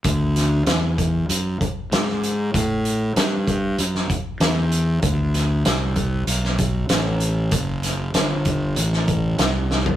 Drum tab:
HH |x-x-x-x-x-x-x-x-|x-x-x-x-x-x-x-x-|x-x-x-x-x-x-x-x-|x-x-x-x-x-x-x---|
SD |--o-o-------o---|----o----o--o---|--o-o----o--o---|--o-o----o--o-o-|
FT |----------------|----------------|----------------|---------------o|
BD |o-----o---o-----|o-----o---o-----|o-----o---o-----|o-----o---o-----|